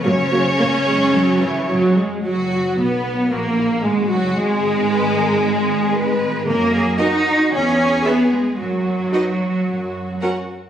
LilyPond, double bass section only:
\new Staff \with { instrumentName = "Double bass section" } { \clef bass \time 4/4 \key b \major \tempo 4 = 112 fis,8 fis,8 fis,8 fis,8 fis,8 fis,8 fis,8 fis,8 | fis,,4 b,,4 ais,,4 gis,,8 fis,,8 | gis,,1 | fis,4 r4 e,4 r4 |
fis,4 r4 fis,4 r4 | }